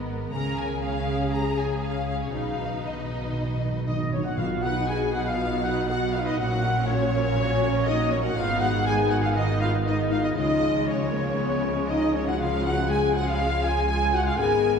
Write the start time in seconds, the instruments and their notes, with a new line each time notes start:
Already playing: double bass section G#1, cello section G#2, harp G#2 D#3 G#3, violin section B3 A#4, viola section B3
0.10 harp B3
0.34 double bass section C#2, cello section C#3, harp C#3, violin section C#4 G#4 A#5, viola section A#4
0.60 harp G#4, violin section G#5
0.83 harp C#4, viola section G#4, violin section F5
1.09 harp G#4
1.34 harp F3, violin section A#5
1.59 harp G#4, violin section G#5
1.84 harp C#4, violin section F5
2.09 harp G#4, violin section F5
2.21 violin section C#5
2.34 double bass section B1, cello section B2, harp B2, timpani B2, viola section D#4, violin section D#4 B4 F5
2.42 timpani B2
2.50 timpani B2
2.58 timpani B2, harp D#4
2.65 timpani B2
2.73 timpani B2
2.81 timpani B2, harp F#3, violin section D#5
2.88 timpani B2
2.96 timpani B2
3.04 timpani B2
3.10 timpani B2, harp D#4
3.20 timpani B2
3.26 timpani B2
3.33 timpani B2, harp B3
3.41 timpani B2
3.49 timpani B2
3.56 timpani B2
3.62 timpani B2, harp D#4
3.72 timpani B2
3.79 timpani B2
3.86 timpani B2, harp F#3, french horn section D#4, violin section D#5, flute D#5, trumpet section D#5
3.94 timpani B2
4.02 timpani B2
4.09 timpani B2, french horn section C#4, harp D#4, violin section C#5, flute C#5, trumpet section C#5
4.16 timpani B2
4.24 timpani B2, french horn section F#4, trumpet section F#5, violin section F#5, flute F#5
4.37 double bass section B1, harp B2, timpani B2, cello section B2, trombone section F#3 D#4, viola section B3 F#4, french horn section F4, violin section F5, flute F5, trumpet section F5
4.62 harp D#4, viola section D#4 B4, french horn section F#4, violin section F#5, trumpet section F#5, flute F#5
4.87 harp F#3, viola section B3 F#4, french horn section G#4, violin section G#5, flute G#5, trumpet section G#5
5.13 harp D#4, viola section D#4 B4, french horn section F#4, trumpet section F#5, violin section F#5, flute F#5
5.25 french horn section F4, trumpet section F5, flute F5, violin section F5
5.38 harp B3, viola section B3 F#4
5.62 harp D#4, viola section D#4 B4, french horn section F#4, trumpet section F#5, flute F#5, violin section F#5
5.88 harp F#3, viola section B3 F#4, french horn section F#4, trumpet section F#5, flute F#5, violin section F#5
6.12 harp D#4, viola section D#4 B4, french horn section F4, violin section F5, trumpet section F5, flute F5
6.24 flute D#5, trumpet section D#5, violin section D#5
6.29 french horn section D#4
6.38 double bass section A#1, cello section A#2, harp A#2, viola section A#3 F#4, trombone section C#4, french horn section F#4, trumpet section F#5, violin section F#5, flute F#5
6.63 viola section C#4 A#4, harp F#4
6.87 harp F#3, viola section A#3 F#4, french horn section C#4, violin section C#5, trumpet section C#5, flute C#5
7.13 viola section C#4 A#4, harp F#4
7.38 harp A#2, viola section A#3 F#4
7.63 viola section C#4 A#4
7.86 viola section A#3 F#4, harp A#3, french horn section D#4, flute D#5, violin section D#5, trumpet section D#5
8.11 viola section C#4 A#4, french horn section C#4, harp F#4, violin section C#5, flute C#5, trumpet section C#5
8.23 french horn section F#4, violin section F#5, trumpet section F#5, flute F#5
8.35 double bass section G#1, harp G#2, cello section G#2, trombone section D#3 B3, viola section B3 D#4, french horn section F4, violin section F5, trumpet section F5, flute F5
8.60 harp D#4, french horn section F#4, trumpet section F#5, flute F#5, violin section F#5
8.84 harp G#3, viola section B3 D#4, french horn section G#4, flute G#5, trumpet section G#5, violin section G#5
9.10 harp D#4, french horn section F#4, trumpet section F#5, flute F#5, violin section F#5
9.22 french horn section F4, trumpet section F5, violin section F5, flute F5
9.34 harp D#3, viola section B3 D#4, french horn section D#4, trumpet section D#5, violin section D#5, flute D#5
9.60 harp D#4, french horn section F4, trumpet section F5, violin section F5, flute F5
9.85 harp G#3, viola section B3 D#4, french horn section D#4, trumpet section D#5, flute D#5, violin section D#5
10.11 harp D#4, french horn section F4, trumpet section F5, violin section F5, flute F5
10.22 french horn section D#4, violin section D#5, trumpet section D#5, flute D#5
10.35 double bass section C#2, cello section C#3, harp C#3, trombone section F3 G#3, viola section G#3 F4, french horn section D#4, violin section D#5, trumpet section D#5, flute D#5
10.62 harp F4
10.86 viola section G#3, harp G#3, french horn section C#4, violin section C#5, trumpet section C#5, flute C#5
11.12 viola section A#3, harp F4
11.38 viola section B3, harp C#4
11.63 viola section A#3, harp F4
11.75 viola section G#3
11.88 harp G#3, french horn section D#4, violin section D#5, trumpet section D#5, flute D#5
12.14 viola section A#3, french horn section C#4, harp F4, trumpet section C#5, violin section C#5, flute C#5
12.27 french horn section F#4, trumpet section F#5, flute F#5, violin section F#5
12.39 harp C#3, viola section G#3 F4, french horn section F4, flute F5, trumpet section F5, violin section F5
12.64 harp G#3, french horn section F#4, violin section F#5, flute F#5, trumpet section F#5
12.88 viola section G#3 F4, harp C#4, french horn section G#4, violin section G#5, trumpet section G#5, flute G#5
13.13 harp F4, french horn section F#4, trumpet section F#5, violin section F#5, flute F#5
13.26 french horn section F4, violin section F5, trumpet section F5, flute F5
13.40 harp C#4
13.63 harp F4, french horn section G#4, violin section G#5, flute G#5, trumpet section G#5
13.88 viola section G#3 F4, harp G#3, french horn section G#4, violin section G#5, flute G#5, trumpet section G#5
14.14 harp F4, french horn section F#4, flute F#5, violin section F#5, trumpet section F#5
14.26 french horn section F4, flute F5, violin section F5, trumpet section F5
14.38 double bass section G#1, cello section G#2, harp G#2, trombone section D#3 G#3, viola section B3 A#4, french horn section G#4, violin section G#5, trumpet section G#5, flute G#5
14.64 harp G#4